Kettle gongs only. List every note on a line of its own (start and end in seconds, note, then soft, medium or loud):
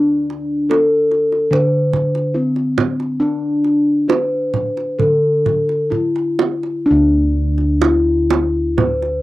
0.00 0.66 D3 medium
0.00 2.31 D4 medium
0.69 0.77 E4 soft
1.51 4.04 D3 medium
2.34 2.42 E4 soft
3.20 5.87 D4 medium
4.08 4.16 E4 soft
4.99 7.78 D3 soft
5.91 5.99 E4 soft
6.86 9.22 D4 medium
6.91 9.22 D2 medium
7.82 7.90 E4 soft